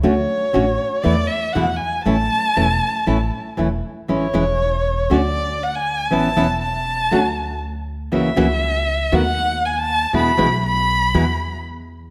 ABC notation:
X:1
M:4/4
L:1/16
Q:1/4=119
K:A
V:1 name="Violin"
c8 d2 e2 f2 g2 | a12 z4 | c8 d4 f g3 | a4 a8 z4 |
e8 f4 g a3 | b4 b8 z4 |]
V:2 name="Nylon-string guitar"
[D,A,CF]2 z2 [D,A,CF]2 z2 [E,A,B,E]2 z2 [B,,E,G,B,E]2 z2 | [E,A,CE]2 z2 [E,A,CE]2 z2 [E,A,CE]2 z2 [E,A,CE]2 z2 | [E,G,CE]2 [E,G,CE]2 z4 [D,A,CF]2 z6 | [E,B,CE]2 [E,B,CE]2 z4 [D,A,CF]2 z6 |
[C,E,^A,CF]2 [C,E,A,CF]2 z4 [^D,=A,B,F]2 z6 | [B,,E,G,B,E]2 [B,,E,G,B,E]2 z4 [B,,E,G,B,E]2 z6 |]
V:3 name="Upright bass" clef=bass
D,,2 z2 A,,,2 z2 E,,2 z2 E,,2 z2 | A,,,2 z2 E,,,2 z2 A,,,2 z2 E,,,2 z2 | A,,,2 E,,,6 D,,8 | A,,,2 E,,,6 D,,8 |
C,,2 C,,6 ^D,,8 | E,,2 B,,,6 E,,8 |]